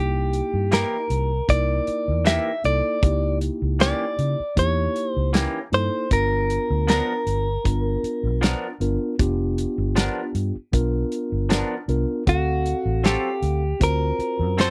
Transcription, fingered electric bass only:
0.00 0.40 C2 medium
0.54 0.83 G2 medium
1.10 1.40 C2 medium
1.49 1.78 C2 medium
1.88 muted fingered electric bass stroke soft
2.08 2.38 E2 medium
2.64 2.80 C2 medium
3.03 3.48 C#2 medium
3.62 3.92 C#2 medium
4.19 4.34 C#3 medium
4.40 muted fingered electric bass stroke soft
4.57 4.86 E2 loud
5.16 5.46 C#2 medium
5.72 5.88 G2 medium
6.11 6.57 G1 medium
6.70 7.00 D2 medium
7.26 7.56 G1 medium
7.65 7.95 G1 medium
8.03 muted fingered electric bass stroke soft
8.23 8.53 B1 medium
8.80 8.96 G1 medium
9.20 9.65 F1 medium
9.78 10.08 G1 medium
10.35 10.50 G2 medium
10.56 muted fingered electric bass stroke soft
10.73 11.03 B1 medium
11.32 11.62 G1 medium
11.88 12.04 C2 medium
12.27 12.73 D2 medium
12.86 13.15 A1 medium
13.42 13.72 D2 medium
13.81 14.11 D2 loud
14.19 muted fingered electric bass stroke soft
14.39 14.69 F#2 medium

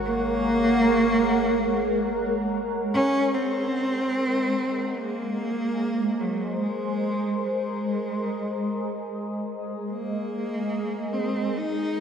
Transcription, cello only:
0.05 2.48 A#3 loud
2.94 3.36 C#4 loud
3.34 5.00 C4 medium
4.98 6.22 A#3 medium
6.21 6.60 F#3 medium
6.60 7.40 G#3 medium
7.44 9.05 G#3 medium
9.91 11.15 A#3 medium
11.13 11.59 C4 medium
11.57 12.00 D#4 medium

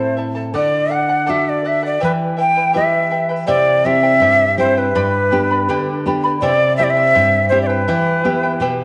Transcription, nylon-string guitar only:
0.00 0.50 A2 medium
0.00 0.51 C4 soft
0.00 0.52 E4 soft
0.00 0.52 A4 medium
0.54 1.97 D3 medium
1.29 2.00 D4 soft
1.29 2.00 F#4 soft
1.29 2.00 A4 medium
2.03 3.45 E3 medium
2.75 3.46 E4 soft
2.75 3.47 G4 soft
2.75 3.47 B4 medium
3.48 4.20 C3 medium
3.85 4.44 C4 soft
3.85 4.44 E4 soft
3.85 4.44 G4 medium
4.20 4.92 G2 medium
4.57 4.87 C4 medium
4.57 4.87 E4 soft
4.57 4.88 G4 medium
4.95 5.66 G2 medium
5.32 5.90 B3 soft
5.32 5.91 D4 soft
5.32 5.91 G4 medium
5.69 6.40 D3 medium
6.06 6.35 B3 soft
6.06 6.35 D4 soft
6.06 6.36 G4 medium
6.42 7.13 C3 medium
6.79 7.38 C4 soft
6.79 7.38 E4 soft
6.79 7.38 G4 soft
7.15 7.86 G2 medium
7.51 7.81 C4 soft
7.51 7.81 E4 soft
7.51 7.81 G4 medium
7.89 8.60 E3 medium
8.25 8.83 B3 soft
8.25 8.83 E4 soft
8.25 8.84 G4 medium
8.60 8.84 B2 medium

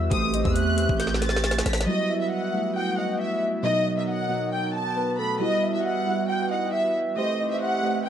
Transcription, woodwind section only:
0.00 1.85 E3 medium
0.11 1.86 A3 medium
0.11 1.86 C4 medium
0.11 1.86 G4 medium
1.88 3.63 E3 medium
1.88 7.13 B3 medium
1.88 3.63 F#4 medium
3.64 5.24 D#3 medium
3.64 5.24 F#3 medium
3.64 7.14 F#4 medium
5.41 7.16 E3 medium
5.41 7.16 G3 medium
7.17 8.09 E3 medium
7.17 8.09 A3 medium
7.17 8.09 C4 medium
7.17 8.09 G4 medium

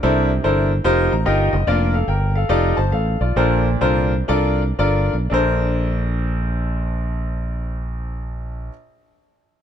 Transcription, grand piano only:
0.03 0.67 C3 medium
0.03 0.30 D4 loud
0.03 0.30 E4 medium
0.03 0.30 A4 medium
0.03 0.30 A#4 medium
0.03 0.30 C5 medium
0.44 0.71 D4 medium
0.44 0.71 E4 medium
0.44 0.71 A4 medium
0.44 0.71 A#4 medium
0.44 0.71 C5 medium
0.84 1.12 D#4 medium
0.84 1.12 F4 medium
0.84 1.12 G4 medium
0.84 1.12 A#4 medium
0.84 1.12 C5 loud
1.12 1.25 A#5 medium
1.25 1.53 D#4 medium
1.25 1.53 F4 medium
1.25 1.53 G4 medium
1.25 1.53 A#4 medium
1.25 1.51 D#5 medium
1.25 1.51 G5 medium
1.53 1.66 D#5 medium
1.67 1.94 A#3 medium
1.67 1.94 D4 medium
1.67 1.94 F4 medium
1.67 1.94 A#4 medium
1.67 1.94 D5 loud
1.94 2.08 A4 medium
1.94 2.07 F5 medium
2.08 2.34 A#4 medium
2.08 2.34 G5 medium
2.35 2.48 A4 medium
2.35 2.75 F5 medium
2.49 2.77 D#4 medium
2.49 2.77 F4 medium
2.49 2.77 G4 medium
2.49 2.77 A4 medium
2.49 2.77 D5 loud
2.77 2.91 C5 medium
2.77 2.91 A5 medium
2.92 3.20 A4 medium
2.92 3.19 F5 medium
3.21 3.35 F4 medium
3.21 3.63 D5 medium
3.36 4.09 A#2 medium
3.36 3.66 D4 medium
3.36 3.66 F4 medium
3.36 3.66 A4 medium
3.36 3.66 A#4 medium
3.36 3.66 C5 medium
3.81 4.12 D4 medium
3.81 4.12 F4 medium
3.81 4.12 A4 medium
3.81 4.12 A#4 medium
3.81 4.12 C5 loud
4.28 4.61 D4 medium
4.28 4.61 F4 medium
4.28 4.61 A4 medium
4.28 4.61 A#4 medium
4.28 4.61 D5 loud
4.79 5.13 D4 medium
4.79 5.13 F4 medium
4.79 5.13 A4 medium
4.79 5.13 A#4 medium
4.79 5.13 D5 loud
5.30 8.69 A#1 medium
5.30 8.67 D4 medium
5.30 8.68 A4 medium
5.30 8.70 A#4 medium
5.30 8.71 C5 loud

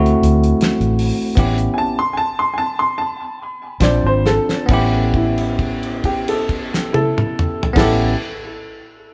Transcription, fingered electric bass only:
0.00 0.14 D2 medium
0.22 0.51 D2 loud
0.80 1.10 A1 medium
1.37 1.67 A1 loud
3.80 3.98 A#1 loud
4.04 4.37 G#1 medium
4.69 7.62 A1 medium
7.75 8.14 A1 medium

